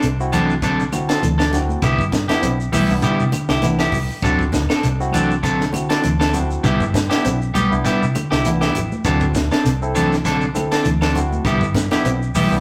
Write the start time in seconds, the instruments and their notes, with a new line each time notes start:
0.02 fingered electric bass C2, clean electric guitar C3, closed hi-hat, high conga, shekere
0.20 tine electric piano C4 E4 F#4, shekere
0.32 clean electric guitar E3 F#3 C4 D4 A4, closed hi-hat, high conga, low conga, claves, shekere
0.50 shekere
0.62 clean electric guitar D3 F#3 C4 D4 A4, kick, closed hi-hat, shekere
0.80 shekere
0.92 clean electric guitar D3, tine electric piano C4 E4 F#4, closed hi-hat, high conga, claves, shekere
1.09 clean electric guitar C4 A4, snare, closed hi-hat, shekere
1.22 fingered electric bass D2, clean electric guitar E3, closed hi-hat, high conga, shekere
1.38 clean electric guitar D4 A4, snare, claves, shekere
1.52 clean electric guitar F#3, tine electric piano C4 E4 F#4, snare, closed hi-hat, low conga, shekere
1.69 high conga, shekere
1.82 fingered electric bass C2, clean electric guitar D3 B3 E4 G4, muted clean electric guitar stroke, kick, closed hi-hat, claves, shekere
1.98 fingered electric bass G2, kick, shekere
2.12 clean electric guitar C3, kick, snare, closed hi-hat, high conga, shekere
2.28 clean electric guitar B3 E4 G4, tine electric piano B3 D4 E4, snare, closed hi-hat, low conga, claves, shekere
2.42 fingered electric bass B1, clean electric guitar C4, closed hi-hat, shekere
2.60 shekere
2.72 fingered electric bass B1, clean electric guitar E3 G3 B3 E4 G4, open hi-hat, high conga, low conga, claves, shekere
2.90 fingered electric bass C2, tine electric piano B3 D4 E4, shekere
3.02 clean electric guitar D3 G3 B3 E4 G4, kick, closed hi-hat, high conga, shekere
3.20 fingered electric bass C3, shekere
3.32 clean electric guitar D3, closed hi-hat, high conga, claves, shekere
3.49 fingered electric bass C2, clean electric guitar E4 G4, muted clean electric guitar stroke, snare, shekere
3.62 clean electric guitar E3, tine electric piano B3 D4 E4, snare, closed hi-hat, high conga, shekere
3.79 clean electric guitar B3 E4 G4, snare, claves, shekere
3.92 fingered electric bass C2, clean electric guitar F#3, kick, open hi-hat, low conga, shekere
4.11 shekere
4.22 fingered electric bass D2, clean electric guitar D3 F#3 C4 D4 A4, tine electric piano C4 E4 F#4, kick, closed hi-hat, high conga, claves, shekere
4.39 kick, shekere
4.52 fingered electric bass D2, kick, snare, closed hi-hat, high conga, shekere
4.69 clean electric guitar C4 D4 A4, snare, claves, shekere
4.82 fingered electric bass C2, clean electric guitar C3, closed hi-hat, high conga, shekere
5.00 tine electric piano C4 E4 F#4, shekere
5.12 clean electric guitar E3 F#3 C4 D4 A4, closed hi-hat, high conga, low conga, claves, shekere
5.31 shekere
5.43 clean electric guitar D3 F#3 C4 A4, muted clean electric guitar stroke, kick, closed hi-hat, high conga, shekere
5.61 snare, shekere
5.73 clean electric guitar D3, tine electric piano C4 E4 F#4, closed hi-hat, high conga, claves, shekere
5.89 clean electric guitar C4 D4 A4, snare, closed hi-hat, shekere
6.03 fingered electric bass D2, clean electric guitar E3, closed hi-hat, high conga, shekere
6.20 clean electric guitar C4 D4 A4, snare, claves, shekere
6.34 clean electric guitar F#3, tine electric piano C4 E4 F#4, closed hi-hat, low conga, shekere
6.51 shekere
6.63 fingered electric bass C2, clean electric guitar D3 G3 B3 E4 G4, kick, closed hi-hat, claves, shekere
6.80 fingered electric bass G2, kick, shekere
6.94 clean electric guitar C3, kick, snare, closed hi-hat, high conga, shekere
7.10 clean electric guitar B3 E4 G4, tine electric piano B3 D4 E4, snare, closed hi-hat, claves, shekere
7.25 fingered electric bass B1, clean electric guitar C4, closed hi-hat, shekere
7.42 shekere
7.54 fingered electric bass B1, clean electric guitar G3 B3 G4, muted clean electric guitar stroke, closed hi-hat, high conga, low conga, claves, shekere
7.71 fingered electric bass C2, tine electric piano B3 D4 E4, shekere
7.85 clean electric guitar G3 B3 E4 G4, muted clean electric guitar stroke, kick, snare, closed hi-hat, shekere
8.02 fingered electric bass C3, shekere
8.15 clean electric guitar D3, closed hi-hat, high conga, claves, shekere
8.31 fingered electric bass C2, clean electric guitar E4 G4, muted clean electric guitar stroke, snare, shekere
8.45 clean electric guitar E3, tine electric piano B3 D4 E4, closed hi-hat, high conga, shekere
8.61 clean electric guitar B3 E4 G4, snare, claves, shekere
8.75 fingered electric bass A1, clean electric guitar F#3, closed hi-hat, low conga, shekere
8.92 high conga, shekere
9.04 fingered electric bass D2, clean electric guitar D3 F#3 C4 D4 A4, tine electric piano C4 E4 F#4, kick, closed hi-hat, claves, shekere
9.21 kick, shekere
9.34 fingered electric bass D2, clean electric guitar C3, kick, snare, closed hi-hat, high conga, shekere
9.51 clean electric guitar C4 D4 A4, snare, claves, shekere
9.65 fingered electric bass C2, clean electric guitar C3, closed hi-hat, shekere
9.82 tine electric piano C4 E4 A4, shekere
9.95 clean electric guitar E3 F#3 C4 D4 A4, closed hi-hat, high conga, low conga, claves, shekere
10.12 snare, shekere
10.25 clean electric guitar D3 F#3 C4 D4 A4, kick, snare, closed hi-hat, high conga, shekere
10.41 shekere
10.54 clean electric guitar D3, tine electric piano C4 E4 A4, closed hi-hat, high conga, claves, shekere
10.72 clean electric guitar C4 D4 A4, snare, closed hi-hat, shekere
10.85 fingered electric bass D2, clean electric guitar E3, closed hi-hat, high conga, shekere
11.01 clean electric guitar C4 D4 A4, snare, claves, shekere
11.15 clean electric guitar F#3, tine electric piano C4 E4 F#4, closed hi-hat, low conga, shekere
11.32 high conga, shekere
11.45 fingered electric bass C2, clean electric guitar D3 G3 B3 E4 G4, kick, closed hi-hat, claves, shekere
11.61 fingered electric bass G2, kick, shekere
11.74 clean electric guitar C3, kick, snare, closed hi-hat, high conga, shekere
11.91 tine electric piano B3 D4 E4, clean electric guitar B3 E4 G4, snare, closed hi-hat, low conga, claves, shekere
12.04 fingered electric bass B1, clean electric guitar C4, closed hi-hat, shekere
12.22 shekere
12.35 fingered electric bass B1, clean electric guitar E3 G3 B3 E4 G4, open hi-hat, high conga, low conga, claves, shekere
12.51 fingered electric bass C2, tine electric piano B3 D4 E4, shekere